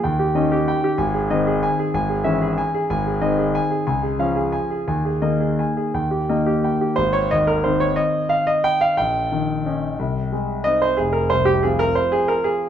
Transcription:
0.04 D#2 G5
0.19 G4
0.35 D#3 C#4 D#5
0.52 G4
0.68 G5
0.84 G4
0.98 G#1 G#5
1.14 G#4
1.30 D#3 C4 D#5
1.47 G#4
1.63 G#5
1.79 G#4
1.94 G#1 G#5
2.09 G#4
2.24 E3 C#4 E5
2.42 G#4
2.58 G#5
2.74 G#4
2.90 G#1 G#5
3.06 G#4
3.21 D#3 C4 D#5
3.38 G#4
3.55 G#5
3.71 G#4
3.87 C#2 G#5
4.03 G#4
4.19 F3 C#4 F5
4.36 G#4
4.52 G#5
4.70 G#4
4.87 D#2 G#5
5.05 G#4
5.22 D#3 A#3 D#5
5.40 G#4
5.59 G#5
5.77 G#4
5.94 D#2 G5
6.11 G4
6.29 D#3 A#3 D#5
6.46 G4
6.64 G5
6.81 G4
6.96 G#1 C5
7.13 C#5
7.31 D#2 D#5
7.47 A#4
7.64 D#3 C4 D#4 C5
7.80 C#5
7.96 D#5
8.29 F5
8.47 D#5
8.64 G5
8.81 F5
8.97 A#1 G5
9.32 D#3
9.66 C#4 D#4
9.99 C2
10.32 G#3
10.64 C4 D#4 D#5
10.82 C5
10.97 F1 G#4
11.13 A#4
11.30 C2 C5
11.45 G4
11.63 F3 C4 F4 G#4
11.79 A#4
11.95 C5
12.12 G#4
12.28 A#4
12.44 G#4

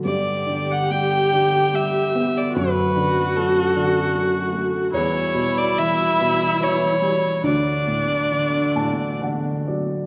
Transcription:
Already playing: D3
0.03 G2 B3 G4 D5
0.47 D3
0.71 F#5
0.91 G3 G5
1.33 D3
1.73 G3 E5
2.15 B3
2.37 D5
2.51 A3 F#4
2.56 F#2 F#4 B4
2.96 D3
3.36 F#3 A4
3.76 D3
4.15 F#3
4.53 A3
4.93 E2 E3 G3 E4 C#5
5.34 B2
5.58 D5
5.78 E3 E5
6.21 B2
6.60 E3 C#5
7.01 G3
7.44 D2 D3 A3 D4 D5
7.87 A2
8.32 D3
8.76 A2 A5
9.21 D3 F#5
9.67 F#3 D5

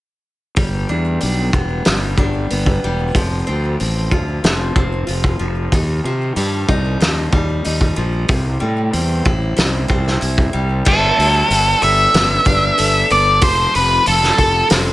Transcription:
0.56 G1 G3, kick, open hi-hat
0.89 E2 D4
1.21 B1 D4, open hi-hat
1.53 B3, kick
1.85 G1 G3, snare, open hi-hat
2.18 G1 D4, kick
2.50 G1 B3, open hi-hat
2.66 kick
2.84 E1 G3
3.15 F1 F3, kick, open hi-hat
3.47 D2 C4
3.80 A1 C4, open hi-hat
4.11 D2 F4, kick
4.44 F1 F3, snare, open hi-hat
4.76 F1 C4, kick
5.07 F1 F4, open hi-hat
5.24 kick
5.39 F1 F3
5.72 D#2 D#3, kick, open hi-hat
6.04 C3 F3
6.36 G2 G3, open hi-hat
6.68 C2 D#4, kick
7.00 D#2 F3, snare, open hi-hat
7.32 D#2 G3, kick
7.65 D#2 D#4, open hi-hat
7.81 kick
7.96 A#1 F3
8.28 C2 C3, kick, open hi-hat
8.60 A2 G3
8.93 E2 C4, open hi-hat
9.25 A1 E4, kick
9.57 C2 G3, snare, open hi-hat
9.88 C2 C4, kick
10.07 snare
10.21 C2 E4, open hi-hat
10.38 kick
10.53 C2 G3
10.85 G1 G3 A4, kick, crash
11.18 D2, open hi-hat
11.50 G1 D4, open hi-hat
11.82 G1 A4 E5, open hi-hat
12.14 G1 B3, snare, open hi-hat
12.45 G1 D4, kick, open hi-hat
12.78 G1 A4, open hi-hat
13.10 G1 B3 D5, open hi-hat
13.41 F1 F3 C5, kick, open hi-hat
13.75 F1 B4, open hi-hat
14.06 F1 F4 A4, open hi-hat
14.23 snare
14.38 F1 A4, kick, open hi-hat
14.70 F1 C4, snare, open hi-hat

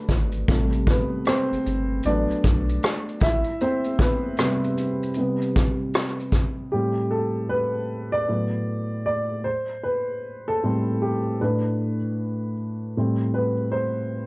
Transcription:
Already playing: D3 F#3 A3 B3 B4
0.09 G#1, kick, closed hi-hat, shaker
0.32 shaker
0.48 A1 C3 G3 A3, kick, shaker
0.73 shaker
0.87 B3 B4, kick, closed hi-hat, shaker
1.25 C4 C5, cross-stick, shaker
1.52 G1, shaker
1.66 G1, closed hi-hat, shaker
2.03 A1 F#3 A3 B3 D4 D5, shaker
2.30 B1, shaker
2.44 B1, kick, closed hi-hat, shaker
2.69 shaker
2.83 cross-stick, shaker
3.09 shaker
3.21 A1 E4 E5, kick, closed hi-hat, shaker
3.44 shaker
3.61 C4 C5, shaker
3.84 shaker
3.99 B3 B4, kick, closed hi-hat, shaker
4.37 C3 G3 B3, cross-stick, shaker
4.64 shaker
4.77 closed hi-hat, shaker
5.03 shaker
5.14 C3 G3, shaker
5.18 B3
5.42 shaker
5.56 kick, closed hi-hat, shaker
5.94 cross-stick, shaker
6.20 shaker
6.32 kick, closed hi-hat, shaker
6.72 A2 G3 C4 G4
7.10 A4
7.49 B4
8.12 D5
8.28 A2 F#3 B3
9.06 D5
9.44 C5
9.84 B4
10.48 A4
10.63 A2 G3 C4
11.02 G4
11.41 A2 A3 D4 B4
12.97 A2 G3 C4
13.34 B4
13.72 C5

